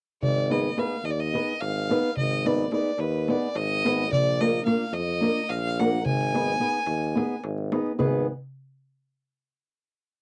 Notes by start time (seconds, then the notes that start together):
0.22 G#1 D5, darbuka dum
0.50 B3 D#4 G#4 B4 D#5, darbuka tek
0.65 darbuka tek
0.77 B3 D#4 G#4 B4 F5, darbuka tek
0.92 darbuka tek
1.04 D#2 D#5, darbuka tek
1.10 D5
1.20 D#5, darbuka tek
1.33 B3 D#4 G#4 B4, darbuka tek
1.48 darbuka tek
1.61 G#1 F5, darbuka tek
1.76 darbuka tek
1.90 B3 D#4 G#4 B4, darbuka tek
2.04 darbuka tek
2.17 G#1 D#5, darbuka dum
2.45 B3 D#4 G#4 B4 D5, darbuka tek
2.71 B3 D#4 G#4 B4 D5, darbuka tek
2.85 darbuka tek
2.98 D#2 B4, darbuka tek
3.13 darbuka tek
3.28 B3 D#4 G#4 B4 D5, darbuka tek
3.42 darbuka tek
3.55 G#1 D#5, darbuka tek
3.71 darbuka tek
3.85 B3 D#4 G#4 B4, darbuka tek
4.00 darbuka tek
4.12 A#1 D5, darbuka dum
4.41 A#3 D4 F4 A#4 D#5, darbuka tek
4.54 darbuka tek
4.66 A#3 D4 F4 A#4 F5, darbuka tek
4.80 darbuka tek
4.92 F2 D#5, darbuka tek
5.09 darbuka tek
5.21 A#3 D4 F4 A#4, darbuka tek
5.36 darbuka tek
5.49 A#1 F5, darbuka tek
5.65 darbuka tek
5.79 A#3 D4 F4 A#4 F#5, darbuka tek
5.92 darbuka tek
6.06 G#1 G#5, darbuka dum
6.34 B3 D#4 G#4 B4, darbuka tek
6.49 darbuka tek
6.60 B3 D#4 G#4 B4
6.74 darbuka tek
6.86 D#2, darbuka tek
7.02 darbuka tek
7.15 B3 D#4 G#4 B4, darbuka tek
7.30 darbuka tek
7.44 G#1, darbuka tek
7.58 darbuka tek
7.72 B3 D#4 G#4 B4, darbuka tek
7.86 darbuka tek
7.99 G#1 B3 D#4 G#4 B4, darbuka dum